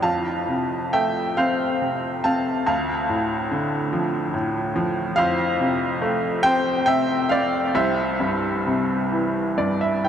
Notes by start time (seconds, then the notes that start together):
0.02 F2 F5 A5
0.48 C3
0.93 A3 E5 G5
1.37 C4 C5 F5
1.81 C3
2.24 C4 F5 A5
2.66 D2 F5 A5
3.09 A2
3.51 D3
3.93 F3
4.34 A2
4.76 F3
5.16 F2 C5 F5
5.60 C3
6.02 A3
6.43 C4 C5 G5
6.86 C3 E5 G5
7.29 C4 D5 F5
7.75 C2 C5 E5
8.20 G2
8.66 C3
9.12 E3
9.58 G2 D5
9.81 E5
10.05 E3 G5